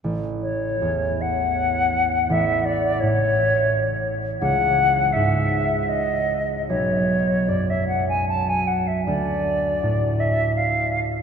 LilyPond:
<<
  \new Staff \with { instrumentName = "Flute" } { \time 3/4 \key a \lydian \tempo 4 = 80 r8 cis''4 fis''4. | e''8 d''8 cis''4. r8 | fis''4 e''4 dis''4 | cis''4 d''16 e''16 fis''16 gis''16 a''16 gis''16 fis''16 e''16 |
\key d \dorian d''4. e''8 f''8. r16 | }
  \new Staff \with { instrumentName = "Harp" } { \clef bass \time 3/4 \key a \lydian a,,4 e,2 | a,,4 a,2 | cis,4 gis,2 | b,,4 fis,2 |
\key d \dorian d,4 a,2 | }
>>